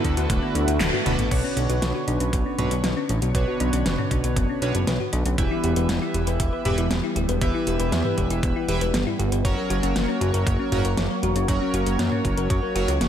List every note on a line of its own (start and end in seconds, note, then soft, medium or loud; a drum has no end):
0.00 0.52 D3 medium
0.00 1.29 D3 medium
0.00 1.30 A3 medium
0.00 1.27 B3 medium
0.00 0.52 D4 medium
0.00 1.30 E4 medium
0.00 0.52 F#4 medium
0.00 1.30 F#4 medium
0.00 0.52 A4 medium
0.00 0.52 B4 medium
0.04 0.15 D2 medium
0.04 0.11 D4 loud
0.04 kick medium
0.04 closed hi-hat medium
0.17 0.28 D2 medium
0.17 0.23 F#4 medium
0.17 closed hi-hat medium
0.30 0.41 D1 loud
0.30 0.40 A3 loud
0.30 kick loud
0.30 closed hi-hat medium
0.43 0.49 B3 loud
0.55 0.66 D2 loud
0.55 0.61 D4 medium
0.55 closed hi-hat medium
0.68 0.79 D2 medium
0.68 0.74 F#4 medium
0.68 closed hi-hat medium
0.80 0.91 D1 loud
0.80 0.93 A4 loud
0.80 snare loud
0.80 clap loud
0.80 closed hi-hat medium
0.93 0.99 F#4 medium
0.93 mid tom medium
1.06 1.17 D1 medium
1.06 1.28 B2 medium
1.06 1.28 D4 medium
1.06 1.16 D4 loud
1.06 1.28 F#4 medium
1.06 1.28 A4 medium
1.06 1.28 B4 medium
1.06 closed hi-hat medium
1.06 high tom medium
1.19 1.30 A1 medium
1.19 1.25 B3 medium
1.19 closed hi-hat medium
1.19 mid tom medium
1.31 1.42 B1 medium
1.31 2.56 B2 medium
1.31 5.34 D3 medium
1.31 9.41 B3 medium
1.31 1.42 B3 medium
1.31 2.56 D4 medium
1.31 2.56 F#4 medium
1.31 2.56 B4 medium
1.31 2.56 C#5 medium
1.31 5.34 C#5 medium
1.31 kick loud
1.31 closed hi-hat medium
1.31 crash medium
1.44 1.50 C#4 loud
1.57 1.68 B1 medium
1.57 1.63 D4 medium
1.57 closed hi-hat medium
1.70 1.80 B1 medium
1.70 1.76 F#4 medium
1.70 closed hi-hat medium
1.82 1.93 B1 loud
1.82 1.94 B4 loud
1.82 snare loud
1.82 closed hi-hat medium
1.95 2.01 F#4 medium
2.08 2.19 B1 medium
2.08 2.18 D4 loud
2.08 closed hi-hat medium
2.20 2.31 B1 medium
2.20 2.27 C#4 medium
2.20 closed hi-hat medium
2.33 2.44 B1 loud
2.33 2.39 B3 medium
2.33 kick loud
2.33 closed hi-hat medium
2.46 2.56 C#4 medium
2.58 2.70 B1 medium
2.58 2.71 B2 medium
2.58 2.71 D4 medium
2.58 2.65 D4 loud
2.58 2.71 F#4 medium
2.58 2.71 B4 medium
2.58 2.71 C#5 loud
2.58 closed hi-hat medium
2.58 mid tom medium
2.71 2.82 B1 medium
2.71 2.77 F#4 medium
2.71 closed hi-hat medium
2.84 2.95 B1 loud
2.84 2.94 B3 loud
2.84 snare loud
2.84 closed hi-hat medium
2.97 3.03 C#4 loud
3.09 3.20 A1 medium
3.09 3.16 D4 medium
3.09 closed hi-hat medium
3.22 3.33 B1 medium
3.22 3.28 F#4 medium
3.22 closed hi-hat medium
3.35 3.46 B1 medium
3.35 4.59 B2 medium
3.35 4.59 D4 medium
3.35 4.59 F#4 medium
3.35 4.59 B4 medium
3.35 3.47 B4 loud
3.35 4.59 C#5 medium
3.35 kick loud
3.35 closed hi-hat medium
3.48 3.54 F#4 medium
3.60 3.71 B1 medium
3.60 3.70 D4 loud
3.60 closed hi-hat medium
3.73 3.84 B1 medium
3.73 3.79 C#4 medium
3.73 closed hi-hat medium
3.86 3.97 F#1 loud
3.86 3.92 B3 medium
3.86 snare loud
3.86 closed hi-hat medium
3.98 4.09 C#4 loud
3.98 mid tom medium
4.11 4.22 B1 medium
4.11 4.17 D4 loud
4.11 kick medium
4.11 closed hi-hat medium
4.24 4.35 B1 medium
4.24 4.30 F#4 medium
4.24 closed hi-hat medium
4.36 4.47 F#1 loud
4.36 4.47 B3 loud
4.36 kick loud
4.36 closed hi-hat medium
4.49 4.55 C#4 medium
4.62 4.73 B1 medium
4.62 4.75 B2 medium
4.62 4.75 D4 medium
4.62 4.68 D4 medium
4.62 4.75 F#4 medium
4.62 4.75 B4 medium
4.62 4.75 C#5 loud
4.62 closed hi-hat medium
4.75 4.86 F#1 medium
4.75 4.81 F#4 medium
4.75 closed hi-hat medium
4.87 4.98 B1 loud
4.87 5.00 B4 loud
4.87 snare loud
4.87 closed hi-hat medium
5.00 5.06 F#4 medium
5.00 mid tom medium
5.13 5.24 B1 loud
5.13 5.23 D4 loud
5.13 closed hi-hat medium
5.26 5.36 B1 medium
5.26 5.32 C#4 medium
5.26 closed hi-hat medium
5.38 5.49 E1 medium
5.38 6.62 E3 medium
5.38 9.41 E3 medium
5.38 9.41 G3 medium
5.38 5.44 B3 medium
5.38 6.62 E4 medium
5.38 6.62 G4 medium
5.38 6.62 B4 medium
5.38 6.62 E5 medium
5.38 kick loud
5.38 closed hi-hat medium
5.51 5.61 E4 loud
5.64 5.75 E1 medium
5.64 5.70 G4 loud
5.64 closed hi-hat medium
5.76 5.87 E1 medium
5.76 5.83 B4 medium
5.76 closed hi-hat medium
5.89 6.00 E1 loud
5.89 5.99 B3 loud
5.89 snare loud
5.89 closed hi-hat medium
6.02 6.08 E4 loud
6.14 6.25 E1 medium
6.14 6.21 G4 medium
6.14 closed hi-hat medium
6.27 6.38 E1 medium
6.27 6.33 B4 medium
6.27 closed hi-hat medium
6.40 6.51 E1 loud
6.40 6.52 E5 loud
6.40 kick loud
6.40 closed hi-hat medium
6.53 6.59 B4 medium
6.65 6.76 E1 medium
6.65 6.78 E3 medium
6.65 6.78 E4 medium
6.65 6.78 G4 medium
6.65 6.76 G4 loud
6.65 6.78 B4 medium
6.65 6.78 E5 loud
6.65 closed hi-hat medium
6.65 mid tom medium
6.78 6.89 E1 medium
6.78 6.84 E4 medium
6.78 closed hi-hat medium
6.91 7.02 E1 loud
6.91 6.97 B3 medium
6.91 snare loud
6.91 closed hi-hat medium
7.04 7.14 E4 loud
7.16 7.27 D1 medium
7.16 7.22 G4 loud
7.16 closed hi-hat medium
7.29 7.40 E1 medium
7.29 7.35 B4 medium
7.29 closed hi-hat medium
7.41 7.52 E1 loud
7.41 8.66 E3 medium
7.41 7.52 B3 loud
7.41 8.66 E4 medium
7.41 8.66 G4 medium
7.41 8.66 B4 medium
7.41 8.66 E5 medium
7.41 kick loud
7.41 closed hi-hat medium
7.54 7.60 E4 loud
7.67 7.78 E1 medium
7.67 7.73 G4 medium
7.67 closed hi-hat medium
7.79 7.91 E1 medium
7.79 7.86 B4 medium
7.79 closed hi-hat medium
7.92 8.03 E2 loud
7.92 8.05 E5 loud
7.92 snare loud
7.92 closed hi-hat medium
8.05 8.11 B4 medium
8.05 mid tom medium
8.18 8.29 E1 medium
8.18 8.28 G4 loud
8.18 kick medium
8.18 closed hi-hat medium
8.30 8.41 E1 medium
8.30 8.37 E4 medium
8.30 closed hi-hat medium
8.43 8.54 E1 loud
8.43 8.49 B3 medium
8.43 kick loud
8.43 closed hi-hat medium
8.56 8.66 E4 loud
8.68 8.79 E1 medium
8.68 8.81 E3 medium
8.68 8.81 E4 medium
8.68 8.81 G4 medium
8.68 8.75 G4 loud
8.68 8.81 B4 medium
8.68 8.81 E5 loud
8.68 closed hi-hat medium
8.81 8.92 E1 medium
8.81 8.88 B4 medium
8.81 closed hi-hat medium
8.94 9.05 G1 loud
8.94 9.04 B3 loud
8.94 snare loud
8.94 closed hi-hat medium
9.07 9.13 E4 loud
9.07 mid tom medium
9.19 9.30 G1 medium
9.19 9.26 G4 medium
9.19 closed hi-hat medium
9.32 9.43 G1 medium
9.32 9.38 B4 medium
9.32 closed hi-hat medium
9.45 9.56 F#1 loud
9.45 10.69 F#3 medium
9.45 13.08 F#3 medium
9.45 13.08 A#3 medium
9.45 10.69 C#4 medium
9.45 10.69 F#4 medium
9.45 10.69 A#4 medium
9.45 9.57 C#5 loud
9.45 10.69 C#5 medium
9.45 13.08 C#5 medium
9.45 kick loud
9.45 closed hi-hat medium
9.57 9.64 A#4 medium
9.70 9.81 F#1 loud
9.70 9.80 F#4 loud
9.70 closed hi-hat medium
9.83 9.94 F#1 medium
9.83 9.89 C#4 medium
9.83 closed hi-hat medium
9.96 10.07 F#1 loud
9.96 10.02 A#3 medium
9.96 snare loud
9.96 closed hi-hat medium
10.08 10.19 C#4 loud
10.21 10.32 F#1 medium
10.21 10.27 F#4 loud
10.21 closed hi-hat medium
10.34 10.45 F#1 medium
10.34 10.40 A#4 medium
10.34 closed hi-hat medium
10.46 10.58 F#1 loud
10.46 10.57 A#3 loud
10.46 kick loud
10.46 closed hi-hat medium
10.59 10.65 C#4 medium
10.72 10.83 F#1 medium
10.72 10.85 F#3 loud
10.72 10.85 C#4 medium
10.72 10.85 F#4 medium
10.72 10.78 F#4 medium
10.72 10.85 A#4 medium
10.72 10.85 C#5 loud
10.72 closed hi-hat medium
10.72 mid tom medium
10.85 10.96 F#1 medium
10.85 10.91 A#4 medium
10.85 closed hi-hat medium
10.97 11.08 F#1 loud
10.97 11.10 C#5 loud
10.97 snare loud
10.97 closed hi-hat medium
11.11 11.16 A#4 medium
11.23 11.34 E1 medium
11.23 11.33 F#4 loud
11.23 closed hi-hat medium
11.35 11.46 F#1 medium
11.35 11.42 C#4 medium
11.35 closed hi-hat medium
11.48 11.59 F#1 medium
11.48 12.73 F#3 medium
11.48 11.55 A#3 medium
11.48 12.73 C#4 medium
11.48 12.73 F#4 medium
11.48 12.73 A#4 medium
11.48 12.73 C#5 medium
11.48 kick loud
11.48 closed hi-hat medium
11.61 11.71 C#4 loud
11.74 11.85 F#1 medium
11.74 11.80 F#4 loud
11.74 closed hi-hat medium
11.86 11.97 F#1 medium
11.86 11.93 A#4 medium
11.86 closed hi-hat medium
11.99 12.10 F#2 loud
11.99 12.10 A#3 loud
11.99 snare loud
11.99 closed hi-hat medium
12.12 12.18 C#4 loud
12.12 mid tom medium
12.25 12.36 F#1 medium
12.25 12.31 F#4 medium
12.25 kick medium
12.25 closed hi-hat medium
12.37 12.48 F#1 medium
12.37 12.43 A#4 medium
12.37 closed hi-hat medium
12.50 12.61 F#2 medium
12.50 12.62 C#5 loud
12.50 kick loud
12.50 closed hi-hat medium
12.63 12.69 A#4 medium
12.75 12.86 F#1 medium
12.75 12.88 F#3 medium
12.75 12.88 C#4 medium
12.75 12.86 F#4 loud
12.75 12.88 F#4 medium
12.75 12.88 A#4 medium
12.75 12.88 C#5 loud
12.75 closed hi-hat medium
12.88 12.99 C#2 medium
12.88 12.94 C#4 medium
12.88 closed hi-hat medium
13.01 13.08 F#1 loud
13.01 13.07 A#3 medium
13.01 snare loud
13.01 closed hi-hat medium